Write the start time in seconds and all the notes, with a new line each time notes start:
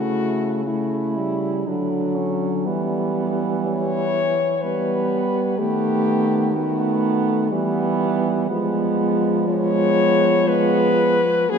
Already playing: C#3 A3 E4 F#4
0.67 A3 E4
1.17 G3
1.67 D3 F#3 D4
2.16 C#4
2.66 E3 G3 B3
3.64 C#5
4.62 G3 B3 B4
5.58 D#3 A3 B3 G4
6.55 A3 B3 F#4
7.51 E3 G3 B3
8.50 F3 G#3 B3
9.49 G#3 B3 C#5
10.47 G#3 B3 B4
11.49 F#3 A#3 C#4 G#4